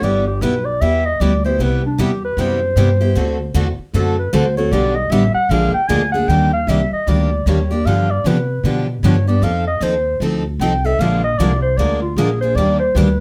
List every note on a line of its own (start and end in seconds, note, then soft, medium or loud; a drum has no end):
0.02 0.40 G1 medium
0.02 0.24 G3 medium
0.02 0.24 B3 medium
0.02 0.24 E4 medium
0.02 0.24 G4 medium
0.02 0.27 D5 loud
0.27 0.43 G4 medium
0.41 0.79 B1 medium
0.41 0.53 G3 medium
0.41 0.53 B3 medium
0.41 0.54 E4 loud
0.41 0.54 G4 medium
0.41 0.67 B4 medium
0.65 0.83 D5 medium
0.81 1.19 E2 medium
0.81 1.02 G3 medium
0.81 1.02 B3 medium
0.81 1.03 E4 medium
0.81 1.03 G4 medium
0.81 1.07 E5 medium
1.06 1.22 D#5 medium
1.20 1.58 D2 loud
1.20 1.32 G3 medium
1.20 1.32 B3 medium
1.20 1.32 E4 loud
1.20 1.32 G4 medium
1.20 1.45 D5 medium
1.44 1.59 B3 soft
1.44 1.59 E4 medium
1.44 1.59 G4 medium
1.44 1.63 C5 medium
1.59 1.97 C2 medium
1.59 1.81 C3 medium
1.59 1.81 G3 medium
1.59 1.81 B3 medium
1.59 1.81 E4 medium
1.59 1.81 G4 medium
1.59 1.84 B4 medium
1.86 2.02 D4 medium
1.98 2.36 E2 medium
1.98 2.10 C3 medium
1.98 2.10 G3 medium
1.98 2.10 B3 medium
1.98 2.10 E4 medium
1.98 2.10 G4 loud
1.98 2.23 G4 medium
2.25 2.42 B4 medium
2.37 2.75 F#2 medium
2.37 2.59 C3 medium
2.37 2.59 G3 medium
2.37 2.59 B3 medium
2.37 2.59 E4 medium
2.37 2.59 G4 medium
2.37 3.56 C5 medium
2.76 3.14 G2 medium
2.76 2.88 C3 medium
2.76 2.88 G3 medium
2.76 2.88 B3 medium
2.76 2.88 E4 medium
2.76 2.88 G4 medium
3.01 3.16 B3 soft
3.01 3.16 E4 medium
3.01 3.15 G4 medium
3.15 3.54 D2 medium
3.15 3.37 D3 medium
3.15 3.37 A3 medium
3.15 3.37 C4 medium
3.15 3.37 F#4 medium
3.15 3.37 A4 medium
3.54 3.77 E2 loud
3.54 3.66 D3 medium
3.54 3.66 A3 medium
3.54 3.66 C4 loud
3.54 3.66 F#4 medium
3.54 3.66 A4 loud
3.78 muted upright bass stroke soft
3.94 4.32 F#2 medium
3.94 4.15 D3 medium
3.94 4.15 A3 medium
3.94 4.15 C4 medium
3.94 4.15 F#4 medium
3.94 4.17 A4 medium
3.94 4.16 A4 medium
4.19 4.35 B4 medium
4.33 4.71 D2 medium
4.33 4.44 D3 medium
4.33 4.44 A3 medium
4.33 4.44 C4 medium
4.33 4.45 F#4 medium
4.33 4.44 A4 medium
4.33 4.56 C5 medium
4.57 4.72 C4 medium
4.57 4.72 F#4 medium
4.57 4.72 A4 medium
4.57 4.73 C#5 medium
4.71 5.09 B1 medium
4.71 4.93 D3 medium
4.71 4.93 G3 medium
4.71 4.94 B3 medium
4.71 4.94 D4 medium
4.71 4.94 G4 medium
4.71 4.97 D5 medium
4.95 5.13 D#5 medium
5.10 5.33 A1 medium
5.10 5.23 D3 medium
5.10 5.23 G3 medium
5.10 5.23 B3 medium
5.10 5.23 D4 loud
5.10 5.23 G4 loud
5.10 5.34 E5 medium
5.34 5.52 F#5 loud
5.34 muted upright bass stroke soft
5.49 5.72 A#1 medium
5.49 5.72 D3 medium
5.49 5.72 F3 medium
5.49 5.72 G#3 medium
5.49 5.72 A#3 medium
5.49 5.72 D4 medium
5.49 5.72 F4 medium
5.49 5.72 G#4 medium
5.49 5.72 A#4 medium
5.49 5.73 F5 medium
5.74 5.89 G5 medium
5.74 muted upright bass stroke soft
5.88 6.27 D2 loud
5.88 6.01 D3 loud
5.88 6.01 F3 medium
5.88 6.01 G#3 medium
5.88 6.01 A#3 loud
5.88 6.01 D4 medium
5.88 6.01 F4 medium
5.88 6.01 G#4 medium
5.88 6.01 A#4 loud
5.88 6.12 G#5 medium
6.12 6.29 A#3 soft
6.12 6.29 D4 medium
6.12 6.29 G#4 medium
6.12 6.30 F#5 medium
6.28 6.66 D#2 medium
6.28 6.50 D#3 medium
6.28 6.50 G3 medium
6.28 6.51 A#3 medium
6.28 6.51 D4 medium
6.28 6.51 G4 medium
6.28 6.52 G5 loud
6.53 6.70 F5 medium
6.67 6.90 C2 medium
6.67 6.79 D#3 medium
6.67 6.80 G3 medium
6.67 6.80 A#3 medium
6.67 6.80 D4 medium
6.67 6.80 G4 loud
6.67 6.92 E5 medium
6.91 7.10 D#5 medium
6.91 muted upright bass stroke soft
7.07 7.45 D2 medium
7.07 7.28 D#3 medium
7.07 7.29 G3 medium
7.07 7.29 A#3 medium
7.07 7.29 D4 medium
7.07 7.29 G4 medium
7.07 7.47 D5 medium
7.46 7.84 D#2 medium
7.46 7.58 D#3 medium
7.46 7.58 G3 medium
7.46 7.58 A#3 medium
7.46 7.58 D4 medium
7.46 7.58 G4 medium
7.46 7.73 C#5 medium
7.71 7.86 A#3 soft
7.71 7.86 D4 medium
7.71 7.85 G4 medium
7.71 7.87 D5 medium
7.85 8.24 G2 medium
7.85 8.07 D3 medium
7.85 8.07 F3 medium
7.85 8.07 B3 medium
7.85 8.08 D4 medium
7.85 8.08 G4 medium
7.85 8.12 F5 medium
8.11 8.29 D5 medium
8.24 8.63 C3 medium
8.24 8.37 D3 medium
8.24 8.37 F3 medium
8.24 8.37 B3 medium
8.24 8.37 D4 medium
8.24 8.37 G4 loud
8.24 8.65 B4 medium
8.63 9.02 B2 medium
8.63 8.86 D3 medium
8.63 8.86 F3 medium
8.63 8.86 B3 medium
8.63 8.86 D4 medium
8.63 8.86 G4 medium
9.03 9.41 G2 loud
9.03 9.15 D3 medium
9.03 9.15 F3 loud
9.03 9.15 B3 medium
9.03 9.15 D4 medium
9.03 9.15 G4 medium
9.03 9.27 C#5 medium
9.27 9.42 B3 medium
9.27 9.43 D4 soft
9.27 9.42 G4 medium
9.27 9.45 D5 medium
9.42 9.80 F2 medium
9.42 9.64 F3 medium
9.42 9.64 C4 medium
9.42 9.64 D#4 medium
9.42 9.64 A4 medium
9.42 9.66 F5 loud
9.67 9.84 D#5 medium
9.81 10.19 D#2 medium
9.81 9.93 F3 medium
9.81 9.93 C4 medium
9.81 9.93 D#4 medium
9.81 9.93 A4 medium
9.81 10.22 C5 medium
10.20 10.59 D2 medium
10.20 10.43 F3 medium
10.20 10.43 C4 medium
10.20 10.43 D#4 medium
10.20 10.43 A4 medium
10.59 10.98 C2 medium
10.59 10.72 F3 medium
10.59 10.72 C4 loud
10.59 10.72 D#4 medium
10.59 10.72 A4 medium
10.59 10.87 G5 medium
10.85 11.00 C4 soft
10.85 11.00 D#4 medium
10.85 10.99 A4 medium
10.85 11.02 E5 loud
10.99 11.37 A#1 medium
10.99 11.21 D3 medium
10.99 11.21 F3 medium
10.99 11.22 G#3 medium
10.99 11.21 A#3 medium
10.99 11.21 D4 medium
10.99 11.22 F4 medium
10.99 11.21 G#4 medium
10.99 11.22 A#4 medium
10.99 11.23 F5 loud
11.24 11.40 D#5 loud
11.38 11.77 C2 medium
11.38 11.50 D3 medium
11.38 11.51 F3 loud
11.38 11.51 G#3 medium
11.38 11.51 A#3 loud
11.38 11.51 D4 medium
11.38 11.51 F4 medium
11.38 11.51 G#4 medium
11.38 11.51 A#4 medium
11.38 11.61 D5 medium
11.62 11.79 C5 medium
11.77 12.16 D2 medium
11.77 11.99 D3 medium
11.77 12.00 F3 medium
11.77 12.00 G#3 medium
11.77 12.00 A#3 medium
11.77 12.00 D4 medium
11.77 12.00 F4 medium
11.77 12.00 G#4 medium
11.77 12.00 A#4 medium
11.77 12.01 D5 medium
12.02 12.19 F4 medium
12.16 12.54 A#1 medium
12.16 12.29 D3 medium
12.16 12.29 F3 medium
12.16 12.29 G#3 medium
12.16 12.29 A#3 medium
12.16 12.29 D4 medium
12.16 12.29 F4 medium
12.16 12.40 G#4 medium
12.16 12.29 G#4 medium
12.16 12.29 A#4 medium
12.41 12.57 A#3 soft
12.41 12.57 D4 soft
12.41 12.56 G#4 medium
12.41 12.57 C5 medium
12.55 12.94 D#2 medium
12.55 12.78 D#3 medium
12.55 12.78 G3 medium
12.55 12.78 A#3 medium
12.55 12.78 D4 medium
12.55 12.79 G4 medium
12.55 12.79 D5 loud
12.80 12.98 C5 medium
12.95 13.20 D2 medium
12.95 13.07 D#3 medium
12.95 13.08 G3 medium
12.95 13.08 A#3 medium
12.95 13.08 D4 loud
12.95 13.08 G4 loud
12.95 13.20 B4 medium